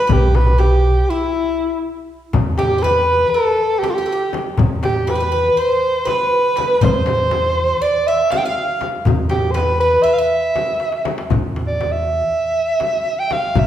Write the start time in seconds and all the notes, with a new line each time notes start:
0.00 B4
0.07 B1 G4, darbuka dum, frame drum
0.12 G4
0.35 B4, darbuka tek, frame drum
0.58 G4, darbuka tek, frame drum
0.84 darbuka ka
1.10 E4
2.33 E2, darbuka dum, frame drum
2.58 G4, darbuka tek, frame drum
2.78 C5
2.83 B4, darbuka tek, frame drum
3.09 darbuka ka
3.30 A4, darbuka ka
3.34 A4
3.79 G4, frame drum
3.84 G4, darbuka tek
3.90 F4
3.94 G4
4.06 A4, darbuka ka
4.12 G4
4.33 darbuka tek, frame drum
4.58 E2, darbuka dum, frame drum
4.83 G4, darbuka tek, frame drum
5.07 B4, darbuka tek, frame drum
5.15 C5
5.20 B4
5.32 B4, darbuka ka
5.57 C5, darbuka ka
6.05 B4, darbuka tek, frame drum
6.10 B4
6.32 darbuka ka
6.56 B4, darbuka tek, frame drum
6.81 E2 C5, darbuka dum, frame drum
7.06 darbuka tek, frame drum
7.31 darbuka tek, frame drum
7.57 darbuka ka
7.82 D5, darbuka ka
8.07 E5
8.31 F5, darbuka tek, frame drum
8.37 G5
8.44 F5
8.56 darbuka ka
8.81 darbuka tek, frame drum
9.05 E2, darbuka dum, frame drum
9.29 G4, darbuka tek, frame drum
9.51 B4 C5, darbuka tek
9.56 B4, frame drum
9.80 B4, darbuka ka
10.03 E5, darbuka ka
10.14 F5
10.18 E5
10.31 darbuka ka
10.56 darbuka tek, frame drum
10.68 darbuka ka
10.80 darbuka tek
10.92 darbuka ka
11.05 darbuka tek, frame drum
11.18 darbuka ka
11.30 E2, frame drum, darbuka dum
11.56 darbuka tek
11.67 D5
11.81 darbuka tek, frame drum
11.92 E5
12.05 darbuka ka
12.30 darbuka ka
12.55 darbuka ka
12.80 darbuka tek, frame drum
13.05 darbuka ka
13.18 G5, darbuka ka
13.31 F5, darbuka tek, frame drum
13.55 E2 E5, frame drum, darbuka dum